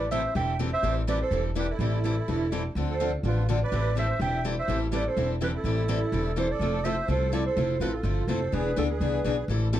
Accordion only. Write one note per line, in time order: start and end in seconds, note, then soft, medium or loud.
0.11 0.34 C5 medium
0.35 0.58 E5 medium
0.73 0.95 C5 medium
1.09 1.20 B4 medium
1.21 1.43 A4 medium
1.57 1.69 G4 medium
1.70 2.66 E4 medium
2.91 3.12 A4 medium
3.26 3.47 F4 medium
3.63 3.95 B4 medium
3.98 4.20 C5 medium
4.22 4.43 E5 medium
4.58 4.80 C5 medium
4.94 5.05 B4 medium
5.07 5.30 A4 medium
5.42 5.47 G4 medium
5.54 6.33 E4 medium
6.37 6.48 A4 medium
6.50 6.85 A4 medium
6.85 7.09 C5 medium
7.09 7.31 A4 medium
7.33 7.44 A4 medium
7.46 7.78 A4 medium
7.80 7.92 F4 medium
7.93 8.28 F4 medium
8.28 8.52 A4 medium
8.53 8.77 G#4 medium
8.77 8.83 F4 medium
8.90 9.45 G#4 medium